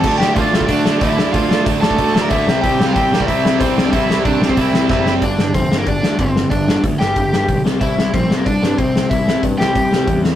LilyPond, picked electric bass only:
\new Staff \with { instrumentName = "Picked electric bass" } { \clef bass \time 4/4 \key c \mixolydian \tempo 4 = 185 d,8 d,8 d,8 d,8 d,4 d,4 | d,8 d,8 d,8 d,8 d,4 d,8 c,8 | c,8 c,8 c,8 c,8 c,4 c,4 | c,8 c,8 c,8 c,8 c,4 ges,,4 |
g,,8 g,,8 f,,8 g,,8 g,,8 d,8 g,,4 | g,,4 d,8 g,,8 g,,8 g,,8 b,,8 c,8 | c,8 c,8 bes,,8 c,8 c,8 g,8 c,4 | c,4 g,8 c,8 c,8 c,8 e,4 | }